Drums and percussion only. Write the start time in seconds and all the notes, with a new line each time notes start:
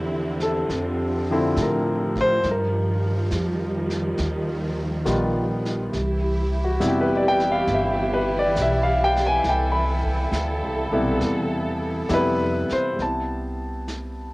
0.40 snare
0.70 brush sweep, snare
1.56 snare, hi-hat pedal
2.16 kick, snare
2.43 brush sweep, snare
3.31 snare, hi-hat pedal
3.90 snare
4.18 brush sweep, snare
5.06 snare, hi-hat pedal
5.65 snare
5.93 brush sweep, snare
6.81 snare, hi-hat pedal
7.40 snare
7.67 brush sweep, snare
8.56 snare, hi-hat pedal
9.16 snare
9.44 brush sweep, snare
10.04 kick
10.33 snare, hi-hat pedal
11.21 brush sweep, snare
12.09 snare, hi-hat pedal
12.70 snare
12.99 brush sweep, snare
13.88 snare, hi-hat pedal